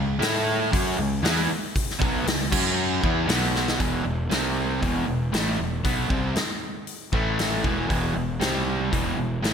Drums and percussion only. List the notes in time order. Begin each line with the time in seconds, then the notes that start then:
0.22 snare, open hi-hat
0.73 kick, open hi-hat
1.25 snare, open hi-hat
1.76 kick, open hi-hat
1.91 snare
2.02 kick
2.27 snare, open hi-hat
2.52 kick, crash
3.04 kick
3.29 snare, open hi-hat
3.56 snare
3.68 snare
3.80 kick, open hi-hat
4.31 snare, open hi-hat
4.83 kick, open hi-hat
5.34 snare, open hi-hat
5.85 kick, open hi-hat
6.10 kick
6.36 snare, open hi-hat
6.87 open hi-hat
7.13 kick
7.39 snare, open hi-hat
7.64 kick
7.90 kick, open hi-hat
8.41 snare, open hi-hat
8.93 kick, open hi-hat
9.44 snare, open hi-hat